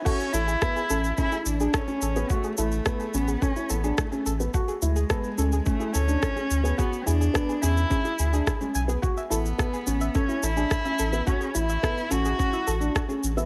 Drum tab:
CC |x---------------|----------------|----------------|----------------|
SH |xxxxxxxxxxxxxxxx|xxxxxxxxxxxxxxxx|xxxxxxxxxxxxxxxx|xxxxxxxxxxxxxxxx|
SD |----r-------r---|----r-------r---|----r-------r---|----r-------r---|
BD |o---o---o---o---|o---o---o---o---|o---o---o---o---|o---o---o---o---|

CC |----------------|----------------|
SH |xxxxxxxxxxxxxxxx|xxxxxxxxxxxxxxxx|
SD |----r-------r---|----r-------r---|
BD |o---o---o---o---|o---o---o---o---|